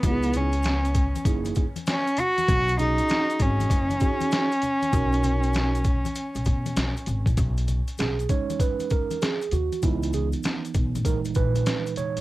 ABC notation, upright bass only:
X:1
M:4/4
L:1/16
Q:"Swing 16ths" 1/4=98
K:B
V:1 name="Upright bass" clef=bass
C,,6- C,, z F,,,2 z6 | B,,,4 z2 G,,,2 F,,,2 z6 | B,,,6- B,,, z2 B,,, B,,2 B,,, z G,,, A,,, | B,,,3 z B,,,2 z8 D,, z |
C,,4 z2 B,,,2 F,,,2 A,,,2 z3 A,,, |]